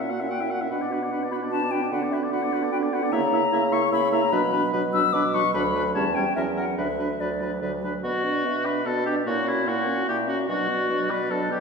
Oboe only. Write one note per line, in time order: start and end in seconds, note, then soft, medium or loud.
0.00 0.11 E5 soft
0.10 0.21 F#5 soft
0.19 0.29 E5 soft
0.30 0.42 F#5 soft
0.40 0.52 E5 soft
0.50 0.62 F#5 soft
0.61 0.70 E5 soft
0.71 0.83 B4 soft
0.81 0.93 D5 soft
0.92 1.04 B4 soft
1.02 1.11 D5 soft
1.12 1.24 B4 medium
1.23 1.34 D5 soft
1.32 1.44 B4 soft
1.42 1.52 D5 soft
1.52 1.64 B4 soft
1.62 1.74 D5 soft
1.72 1.84 B4 soft
1.82 1.91 D5 soft
1.92 2.04 B4 medium
2.03 2.14 D5 soft
2.13 2.24 B4 medium
2.23 2.32 D5 soft
2.32 2.44 B4 medium
2.42 2.54 D5 medium
2.53 2.64 B4 medium
2.62 2.71 D5 medium
2.72 2.84 B4 medium
2.82 2.94 D5 soft
2.93 3.04 B4 medium
3.03 3.12 D5 medium
3.12 3.21 E5 medium
3.33 3.42 E5 medium
3.53 3.62 E5 medium
3.72 3.81 E5 medium
3.92 4.01 E5 medium
4.13 4.22 E5 medium
4.32 4.42 B4 medium
4.52 4.62 B4 medium
4.73 4.82 B4 medium
4.94 5.03 B4 medium
5.14 5.23 B4 medium
5.34 5.43 B4 medium
5.54 5.63 B4 medium
5.75 5.84 B4 medium
5.95 6.04 C#5 medium
6.15 6.25 C#5 medium
6.36 6.46 A#4 medium
6.57 6.66 A#4 medium
6.78 6.88 B4 medium
6.99 7.09 B4 medium
7.20 7.30 B4 soft
7.41 7.51 B4 soft
7.62 7.71 B4 soft
7.84 7.93 B4 soft
8.04 8.67 F#4 medium
8.65 8.87 B4 medium
8.86 9.05 A4 medium
9.06 9.15 G4 medium
9.27 9.49 F#4 medium
9.48 9.69 E4 medium
9.67 10.08 F#4 medium
10.08 10.17 G4 medium
10.28 10.38 F#4 medium
10.49 11.12 F#4 medium
11.10 11.32 B4 medium
11.31 11.51 A4 medium
11.51 11.60 G4 medium